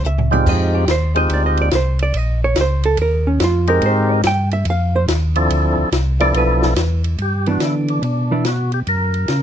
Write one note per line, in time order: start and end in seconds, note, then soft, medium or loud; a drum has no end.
0.04 0.45 C#2 medium
0.04 0.32 E5 loud
0.04 hi-hat pedal medium
0.18 floor tom medium
0.31 0.85 G#3 medium
0.31 0.85 C4 medium
0.31 0.85 D#4 medium
0.31 0.85 F4 medium
0.31 0.85 G4 medium
0.31 0.46 D5 medium
0.31 floor tom medium
0.46 0.87 F2 medium
0.46 0.75 D#5 medium
0.46 kick medium
0.46 crash medium
0.75 0.88 G4 medium
0.87 1.28 D#2 medium
0.87 1.16 C5 medium
0.87 snare medium
0.87 hi-hat pedal medium
0.87 ride medium
1.15 1.69 G#3 medium
1.15 1.69 C4 medium
1.15 1.69 D#4 medium
1.15 1.69 F4 medium
1.15 1.69 G4 medium
1.15 1.30 D#5 loud
1.15 ride soft
1.29 1.70 D2 medium
1.29 ride medium
1.34 1.45 D5 medium
1.46 1.59 D#5 medium
1.57 ride soft
1.62 1.73 D5 medium
1.71 2.13 C2 medium
1.71 2.01 C5 medium
1.71 snare medium
1.71 hi-hat pedal medium
1.71 ride medium
1.99 2.17 D5 loud
1.99 ride soft
2.14 2.55 A#1 medium
2.14 2.42 D#5 loud
2.14 ride medium
2.44 2.57 C#5 medium
2.56 2.97 C#2 medium
2.56 snare medium
2.56 hi-hat pedal medium
2.56 ride medium
2.61 2.85 C5 medium
2.83 2.99 A4 medium
2.83 ride soft
2.97 3.39 D#2 medium
2.97 ride medium
3.02 3.27 A#4 loud
3.27 3.40 C#4 medium
3.40 3.81 F2 medium
3.40 snare medium
3.40 hi-hat pedal medium
3.40 ride medium
3.44 3.69 F4 medium
3.67 4.21 G#3 medium
3.67 4.21 C4 medium
3.67 4.22 D#4 medium
3.67 4.22 G4 medium
3.67 4.22 A#4 medium
3.67 3.83 A#4 medium
3.67 ride soft
3.82 4.23 G#2 medium
3.82 ride medium
3.86 4.13 C5 medium
4.13 4.25 D#5 medium
4.23 4.65 G2 medium
4.23 4.52 G5 loud
4.23 snare medium
4.23 hi-hat pedal medium
4.23 ride medium
4.51 4.66 E5 loud
4.51 ride soft
4.65 5.07 F2 medium
4.65 ride medium
4.70 4.95 F5 loud
4.96 5.04 C5 loud
5.08 5.49 D#2 medium
5.08 snare medium
5.08 hi-hat pedal medium
5.08 ride medium
5.35 5.89 F3 medium
5.35 5.90 C4 medium
5.35 5.90 D4 medium
5.35 5.90 E4 medium
5.35 5.90 A4 medium
5.35 ride soft
5.50 5.76 D2 medium
5.50 ride medium
5.78 5.85 D2 soft
5.92 6.33 C2 loud
5.92 snare medium
5.92 hi-hat pedal medium
5.92 ride medium
6.20 6.73 F3 medium
6.20 6.74 B3 medium
6.20 6.74 D4 medium
6.20 6.74 E4 medium
6.20 6.74 A4 medium
6.20 6.34 D5 loud
6.20 ride soft
6.34 6.75 B1 medium
6.34 7.02 B4 medium
6.34 ride medium
6.62 snare medium
6.76 7.17 E2 loud
6.76 snare medium
6.76 hi-hat pedal medium
6.76 ride medium
7.04 ride soft
7.18 7.58 G2 medium
7.18 7.49 G4 medium
7.18 ride soft
7.46 8.00 E3 medium
7.46 8.00 B3 medium
7.46 8.01 D4 medium
7.46 ride soft
7.51 7.63 F#4 medium
7.60 7.99 D3 medium
7.60 7.75 E4 medium
7.60 snare medium
7.60 hi-hat pedal soft
7.60 ride medium
7.88 8.03 D4 medium
7.88 ride soft
8.02 8.82 B2 medium
8.02 8.32 D4 medium
8.02 ride soft
8.31 8.44 E3 soft
8.31 8.44 B3 medium
8.31 8.44 D4 medium
8.31 8.45 E4 medium
8.45 8.72 F#4 medium
8.45 snare medium
8.45 hi-hat pedal soft
8.45 ride medium
8.72 8.80 G4 medium
8.72 ride soft
8.87 9.26 F#2 medium
8.87 9.43 A#4 medium
8.87 ride medium
9.14 ride soft
9.28 9.43 C#3 medium
9.28 snare medium
9.28 hi-hat pedal medium
9.28 ride medium